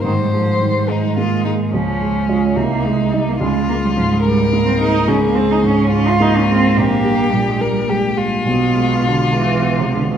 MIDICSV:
0, 0, Header, 1, 4, 480
1, 0, Start_track
1, 0, Tempo, 559701
1, 41, Time_signature, 6, 3, 24, 8
1, 6281, Tempo, 580833
1, 8638, End_track
2, 0, Start_track
2, 0, Title_t, "Violin"
2, 0, Program_c, 0, 40
2, 35, Note_on_c, 0, 72, 38
2, 772, Note_on_c, 0, 63, 37
2, 785, Note_off_c, 0, 72, 0
2, 999, Note_off_c, 0, 63, 0
2, 1004, Note_on_c, 0, 65, 38
2, 1237, Note_off_c, 0, 65, 0
2, 1242, Note_on_c, 0, 63, 36
2, 1311, Note_off_c, 0, 63, 0
2, 1488, Note_on_c, 0, 61, 41
2, 2199, Note_on_c, 0, 63, 39
2, 2211, Note_off_c, 0, 61, 0
2, 2908, Note_off_c, 0, 63, 0
2, 2913, Note_on_c, 0, 65, 49
2, 3627, Note_off_c, 0, 65, 0
2, 3633, Note_on_c, 0, 70, 54
2, 4355, Note_on_c, 0, 68, 46
2, 4368, Note_off_c, 0, 70, 0
2, 5064, Note_off_c, 0, 68, 0
2, 5069, Note_on_c, 0, 65, 47
2, 5803, Note_on_c, 0, 67, 53
2, 5816, Note_off_c, 0, 65, 0
2, 6516, Note_on_c, 0, 70, 44
2, 6528, Note_off_c, 0, 67, 0
2, 6750, Note_on_c, 0, 67, 44
2, 6762, Note_off_c, 0, 70, 0
2, 6977, Note_on_c, 0, 65, 53
2, 6989, Note_off_c, 0, 67, 0
2, 8638, Note_off_c, 0, 65, 0
2, 8638, End_track
3, 0, Start_track
3, 0, Title_t, "Cello"
3, 0, Program_c, 1, 42
3, 34, Note_on_c, 1, 51, 49
3, 156, Note_off_c, 1, 51, 0
3, 164, Note_on_c, 1, 55, 42
3, 268, Note_off_c, 1, 55, 0
3, 273, Note_on_c, 1, 53, 44
3, 505, Note_off_c, 1, 53, 0
3, 510, Note_on_c, 1, 55, 44
3, 753, Note_on_c, 1, 56, 51
3, 766, Note_off_c, 1, 55, 0
3, 1474, Note_on_c, 1, 53, 48
3, 1486, Note_off_c, 1, 56, 0
3, 1952, Note_off_c, 1, 53, 0
3, 1957, Note_on_c, 1, 56, 47
3, 2195, Note_off_c, 1, 56, 0
3, 2209, Note_on_c, 1, 58, 51
3, 2440, Note_on_c, 1, 56, 53
3, 2453, Note_off_c, 1, 58, 0
3, 2680, Note_on_c, 1, 55, 52
3, 2693, Note_off_c, 1, 56, 0
3, 2818, Note_on_c, 1, 58, 51
3, 2831, Note_off_c, 1, 55, 0
3, 2911, Note_off_c, 1, 58, 0
3, 2916, Note_on_c, 1, 56, 55
3, 3156, Note_off_c, 1, 56, 0
3, 3161, Note_on_c, 1, 58, 54
3, 3210, Note_off_c, 1, 58, 0
3, 3293, Note_on_c, 1, 55, 46
3, 3340, Note_off_c, 1, 55, 0
3, 3394, Note_on_c, 1, 53, 53
3, 3445, Note_off_c, 1, 53, 0
3, 3528, Note_on_c, 1, 56, 50
3, 3576, Note_off_c, 1, 56, 0
3, 3636, Note_on_c, 1, 55, 60
3, 3871, Note_off_c, 1, 55, 0
3, 3876, Note_on_c, 1, 56, 58
3, 3925, Note_off_c, 1, 56, 0
3, 3995, Note_on_c, 1, 60, 56
3, 4108, Note_off_c, 1, 60, 0
3, 4113, Note_on_c, 1, 63, 63
3, 4355, Note_on_c, 1, 61, 57
3, 4368, Note_off_c, 1, 63, 0
3, 4476, Note_off_c, 1, 61, 0
3, 4493, Note_on_c, 1, 58, 57
3, 4589, Note_on_c, 1, 60, 59
3, 4602, Note_off_c, 1, 58, 0
3, 4729, Note_on_c, 1, 63, 52
3, 4742, Note_off_c, 1, 60, 0
3, 4838, Note_off_c, 1, 63, 0
3, 4843, Note_on_c, 1, 61, 61
3, 5073, Note_off_c, 1, 61, 0
3, 5085, Note_on_c, 1, 61, 66
3, 5213, Note_on_c, 1, 65, 59
3, 5225, Note_off_c, 1, 61, 0
3, 5330, Note_on_c, 1, 63, 62
3, 5343, Note_off_c, 1, 65, 0
3, 5454, Note_on_c, 1, 61, 55
3, 5467, Note_off_c, 1, 63, 0
3, 5566, Note_off_c, 1, 61, 0
3, 5575, Note_on_c, 1, 60, 61
3, 5813, Note_on_c, 1, 58, 61
3, 5826, Note_off_c, 1, 60, 0
3, 6275, Note_on_c, 1, 55, 54
3, 6288, Note_off_c, 1, 58, 0
3, 6405, Note_on_c, 1, 56, 54
3, 6417, Note_off_c, 1, 55, 0
3, 6511, Note_on_c, 1, 55, 53
3, 6524, Note_off_c, 1, 56, 0
3, 6747, Note_off_c, 1, 55, 0
3, 7221, Note_on_c, 1, 47, 55
3, 7714, Note_on_c, 1, 50, 49
3, 7727, Note_off_c, 1, 47, 0
3, 7946, Note_on_c, 1, 52, 54
3, 7958, Note_off_c, 1, 50, 0
3, 8319, Note_on_c, 1, 48, 46
3, 8331, Note_off_c, 1, 52, 0
3, 8437, Note_off_c, 1, 48, 0
3, 8442, Note_on_c, 1, 50, 48
3, 8490, Note_off_c, 1, 50, 0
3, 8580, Note_on_c, 1, 47, 38
3, 8638, Note_off_c, 1, 47, 0
3, 8638, End_track
4, 0, Start_track
4, 0, Title_t, "Grand piano"
4, 0, Program_c, 2, 0
4, 0, Control_c, 2, 64, 127
4, 37, Note_on_c, 2, 44, 35
4, 58, Control_c, 2, 64, 0
4, 192, Control_c, 2, 64, 127
4, 279, Note_on_c, 2, 56, 27
4, 527, Note_on_c, 2, 51, 27
4, 668, Note_off_c, 2, 56, 0
4, 770, Note_on_c, 2, 56, 29
4, 914, Note_off_c, 2, 51, 0
4, 1005, Note_on_c, 2, 58, 25
4, 1155, Note_off_c, 2, 56, 0
4, 1246, Note_off_c, 2, 58, 0
4, 1246, Note_on_c, 2, 56, 28
4, 1448, Note_off_c, 2, 44, 0
4, 1484, Note_off_c, 2, 56, 0
4, 1487, Note_on_c, 2, 37, 38
4, 1501, Control_c, 2, 64, 0
4, 1628, Control_c, 2, 64, 127
4, 1728, Note_on_c, 2, 56, 28
4, 1964, Note_on_c, 2, 65, 27
4, 1966, Note_on_c, 2, 73, 34
4, 2109, Note_off_c, 2, 56, 0
4, 2179, Note_off_c, 2, 65, 0
4, 2180, Note_off_c, 2, 73, 0
4, 2183, Note_off_c, 2, 37, 0
4, 2199, Note_on_c, 2, 36, 39
4, 2221, Control_c, 2, 64, 0
4, 2360, Control_c, 2, 64, 127
4, 2440, Note_on_c, 2, 56, 29
4, 2682, Note_on_c, 2, 63, 30
4, 2683, Note_on_c, 2, 75, 32
4, 2828, Note_off_c, 2, 56, 0
4, 2901, Note_off_c, 2, 63, 0
4, 2901, Note_off_c, 2, 75, 0
4, 2902, Note_off_c, 2, 36, 0
4, 2921, Note_on_c, 2, 37, 43
4, 2943, Control_c, 2, 64, 0
4, 3061, Control_c, 2, 64, 127
4, 3167, Note_on_c, 2, 56, 33
4, 3410, Note_on_c, 2, 44, 33
4, 3552, Note_off_c, 2, 56, 0
4, 3645, Note_on_c, 2, 56, 35
4, 3791, Note_off_c, 2, 44, 0
4, 3884, Note_on_c, 2, 58, 28
4, 4027, Note_off_c, 2, 56, 0
4, 4121, Note_on_c, 2, 56, 35
4, 4123, Note_off_c, 2, 58, 0
4, 4324, Note_off_c, 2, 37, 0
4, 4354, Note_on_c, 2, 37, 44
4, 4360, Note_off_c, 2, 56, 0
4, 4377, Control_c, 2, 64, 0
4, 4519, Control_c, 2, 64, 127
4, 4595, Note_on_c, 2, 56, 34
4, 4833, Note_on_c, 2, 44, 33
4, 4976, Note_off_c, 2, 56, 0
4, 5082, Note_on_c, 2, 56, 35
4, 5217, Note_off_c, 2, 44, 0
4, 5320, Note_on_c, 2, 58, 30
4, 5464, Note_off_c, 2, 56, 0
4, 5560, Note_off_c, 2, 58, 0
4, 5569, Note_on_c, 2, 56, 37
4, 5762, Note_off_c, 2, 37, 0
4, 5806, Note_off_c, 2, 56, 0
4, 5806, Note_on_c, 2, 34, 46
4, 5817, Control_c, 2, 64, 0
4, 5927, Control_c, 2, 64, 127
4, 6039, Note_on_c, 2, 55, 33
4, 6286, Note_on_c, 2, 46, 33
4, 6419, Note_off_c, 2, 55, 0
4, 6511, Note_on_c, 2, 55, 34
4, 6658, Note_off_c, 2, 46, 0
4, 6746, Note_on_c, 2, 56, 27
4, 6889, Note_off_c, 2, 55, 0
4, 6977, Note_on_c, 2, 55, 31
4, 6983, Note_off_c, 2, 56, 0
4, 7192, Note_off_c, 2, 34, 0
4, 7213, Note_on_c, 2, 35, 41
4, 7219, Note_off_c, 2, 55, 0
4, 7240, Control_c, 2, 64, 0
4, 7357, Control_c, 2, 64, 127
4, 7460, Note_on_c, 2, 56, 29
4, 7689, Note_on_c, 2, 47, 29
4, 7845, Note_off_c, 2, 56, 0
4, 7937, Note_on_c, 2, 56, 29
4, 8082, Note_off_c, 2, 47, 0
4, 8177, Note_on_c, 2, 59, 23
4, 8331, Note_off_c, 2, 56, 0
4, 8426, Note_on_c, 2, 56, 27
4, 8428, Note_off_c, 2, 59, 0
4, 8638, Note_off_c, 2, 35, 0
4, 8638, Note_off_c, 2, 56, 0
4, 8638, End_track
0, 0, End_of_file